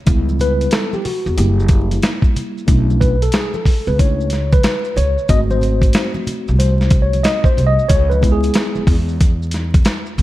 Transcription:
0.06 0.65 C#2 medium
0.06 1.00 G3 medium
0.06 1.01 B3 medium
0.06 1.01 E4 medium
0.06 kick loud
0.06 closed hi-hat medium
0.06 maracas medium
0.29 high conga medium
0.29 maracas soft
0.39 0.74 B4 loud
0.39 closed hi-hat medium
0.39 low conga medium
0.39 maracas soft
0.61 closed hi-hat soft
0.61 maracas soft
0.71 0.94 A4 medium
0.71 snare loud
0.71 closed hi-hat medium
0.71 maracas medium
0.93 1.05 G4 medium
0.93 high conga medium
0.93 maracas soft
1.05 1.35 F#4 medium
1.05 open hi-hat soft
1.05 high conga soft
1.05 low conga medium
1.05 maracas soft
1.26 1.36 E2 medium
1.26 maracas soft
1.37 1.96 F#1 loud
1.37 2.64 G3 soft
1.37 2.64 A#3 soft
1.37 2.64 E4 medium
1.37 1.99 G4 medium
1.37 closed hi-hat loud
1.37 high conga soft
1.37 maracas medium
1.60 maracas soft
1.69 kick loud
1.69 closed hi-hat medium
1.69 maracas soft
1.91 closed hi-hat soft
1.91 high conga medium
1.91 maracas soft
2.02 snare medium
2.02 closed hi-hat medium
2.02 maracas medium
2.22 kick medium
2.22 maracas soft
2.36 closed hi-hat medium
2.36 low conga medium
2.36 maracas soft
2.58 maracas soft
2.67 3.26 B1 medium
2.67 3.14 A3 medium
2.67 3.15 C#4 soft
2.67 3.15 D4 soft
2.67 3.15 E4 medium
2.67 kick medium
2.67 closed hi-hat medium
2.67 maracas medium
2.90 high conga medium
2.90 maracas soft
3.01 3.22 B4 medium
3.01 kick medium
3.01 closed hi-hat medium
3.01 low conga medium
3.01 maracas soft
3.22 3.34 A4 medium
3.22 closed hi-hat soft
3.22 maracas soft
3.32 3.55 G#4 medium
3.32 snare loud
3.32 closed hi-hat loud
3.32 maracas medium
3.54 3.88 A4 medium
3.54 high conga medium
3.54 maracas soft
3.65 kick medium
3.65 open hi-hat soft
3.65 high conga soft
3.65 low conga medium
3.65 maracas soft
3.87 4.60 C#2 medium
3.87 3.99 B4 medium
3.87 maracas soft
3.98 4.28 A3 soft
3.98 4.28 C#4 soft
3.98 4.28 D4 soft
3.98 4.28 E4 soft
3.98 4.54 C#5 medium
3.98 kick loud
3.98 closed hi-hat loud
3.98 high conga soft
3.98 maracas medium
4.20 maracas soft
4.30 snare soft
4.30 closed hi-hat medium
4.30 maracas soft
4.53 4.98 B4 loud
4.53 kick medium
4.53 closed hi-hat soft
4.53 high conga medium
4.53 maracas soft
4.63 snare loud
4.63 closed hi-hat medium
4.63 maracas medium
4.85 maracas soft
4.96 5.15 C#2 medium
4.96 5.30 C#5 medium
4.96 closed hi-hat medium
4.96 low conga medium
4.96 maracas soft
5.18 maracas soft
5.29 5.87 G#1 loud
5.29 7.86 A3 medium
5.29 7.86 C4 medium
5.29 7.86 F#4 medium
5.29 5.39 D#5 loud
5.29 kick loud
5.29 closed hi-hat medium
5.29 maracas medium
5.50 6.12 C5 loud
5.50 high conga medium
5.50 maracas soft
5.61 closed hi-hat medium
5.61 low conga medium
5.61 maracas soft
5.82 kick medium
5.82 closed hi-hat medium
5.82 maracas soft
5.93 snare loud
5.93 closed hi-hat medium
5.93 maracas medium
6.14 high conga medium
6.14 maracas soft
6.27 closed hi-hat medium
6.27 high conga soft
6.27 low conga medium
6.27 maracas soft
6.48 7.21 C2 medium
6.48 maracas soft
6.59 7.04 C5 medium
6.59 closed hi-hat medium
6.59 high conga soft
6.59 maracas medium
6.81 snare soft
6.81 maracas soft
6.91 kick loud
6.91 closed hi-hat medium
6.91 maracas soft
7.02 7.25 C#5 medium
7.13 closed hi-hat soft
7.13 high conga medium
7.13 maracas soft
7.23 7.46 D#5 loud
7.23 snare loud
7.23 closed hi-hat medium
7.23 maracas medium
7.44 7.68 C5 medium
7.44 kick medium
7.44 maracas soft
7.57 7.76 C2 medium
7.57 closed hi-hat medium
7.57 low conga medium
7.57 maracas soft
7.67 7.90 D#5 loud
7.79 maracas soft
7.88 8.48 C#2 loud
7.88 8.11 C#5 loud
7.88 kick loud
7.88 closed hi-hat medium
7.88 maracas medium
8.10 8.31 B4 medium
8.10 high conga medium
8.10 maracas soft
8.21 9.16 G#3 medium
8.21 9.16 B3 medium
8.21 9.16 E4 medium
8.21 kick medium
8.21 closed hi-hat medium
8.21 low conga medium
8.21 maracas soft
8.32 8.94 G#4 medium
8.43 closed hi-hat soft
8.43 maracas soft
8.54 snare loud
8.54 closed hi-hat loud
8.54 maracas medium
8.75 muted upright bass stroke soft
8.75 high conga medium
8.75 maracas soft
8.87 9.81 E2 medium
8.87 kick medium
8.87 open hi-hat soft
8.87 high conga soft
8.87 low conga medium
8.87 maracas soft
9.09 maracas medium
9.21 kick loud
9.21 closed hi-hat loud
9.21 high conga soft
9.21 maracas medium
9.42 maracas soft
9.51 snare soft
9.51 closed hi-hat medium
9.51 maracas soft
9.74 kick medium
9.74 closed hi-hat soft
9.74 high conga medium
9.74 maracas soft
9.85 snare medium
9.85 closed hi-hat medium
9.85 maracas medium
10.06 maracas soft
10.18 10.22 E2 medium
10.18 closed hi-hat medium
10.18 low conga medium
10.18 maracas soft

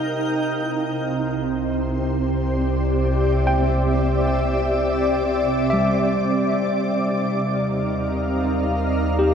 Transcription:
0.00 0.34 C3 medium
0.00 0.32 D#4 medium
0.00 2.22 A#4 medium
0.00 0.33 F5 medium
0.00 1.42 G5 medium
0.00 0.35 G6 medium
0.33 6.63 C2 medium
0.33 9.34 C3 medium
0.33 8.53 C4 medium
0.63 3.16 E4 medium
1.22 8.24 G4 medium
2.10 9.19 D5 medium
2.57 6.68 E5 medium
3.47 5.96 G5 medium
5.70 8.21 G3 medium
5.70 6.83 E5 medium
6.67 9.34 D#2 medium
6.67 9.34 D#4 medium
7.03 9.34 A#4 medium
7.03 9.34 F5 medium
9.19 9.34 G4 medium

